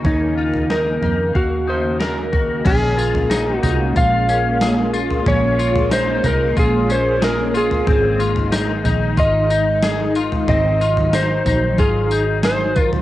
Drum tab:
CC |----------------|x---------------|----------------|----------------|
TB |----------------|--x-x-x-x-x-x-x-|--x-x-x-x-x-x-x-|--x-x-x-x-x-x-x-|
SD |----o-------o---|----o-------o---|----o-------o---|----o-------o---|
FT |o--o--o-o-----o-|o--o--o-o------o|o--o--o-o------o|o--o--o-o------o|
BD |o-------o-----o-|o-------o-------|--------o-------|o-------o-------|

CC |----------------|
TB |--x-x-x-x-x-x-x-|
SD |----o-------o---|
FT |o--o--o-o------o|
BD |--------o-----o-|